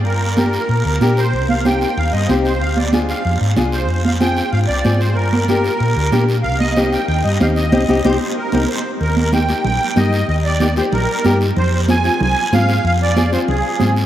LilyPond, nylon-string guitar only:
\new Staff \with { instrumentName = "Nylon-string guitar" } { \time 4/4 \key c \minor \tempo 4 = 188 r4 <bes d' g'>8 r4. <bes d' g'>8 r8 | r4 <c' ees' g'>8 r4. <c' ees' g'>8 r8 | r4 <d' f' aes'>8 r4. <d' f' aes'>8 r8 | r4 <c' f' aes'>8 r4. <c' f' aes'>8 r8 |
r4 <bes d' g'>8 r4. <bes d' g'>8 r8 | r4 <c' ees' g'>8 r4. <c' ees' g'>8 r8 | <c' ees' g'>8 <c' ees' g'>8 <c' ees' g'>8 r4 <c' ees' g'>8 r4 | r4 <bes ees' g'>8 <bes ees' g'>8 r4 <bes ees' g'>8 r8 |
r4 <bes ees' g'>8 <bes ees' g'>8 r4 <bes ees' g'>8 r8 | r4 <c' f' aes'>8 <c' f' aes'>8 r4 <c' f' aes'>8 r8 | r4 <c' f' aes'>8 <c' f' aes'>8 r4 <c' f' aes'>8 r8 | }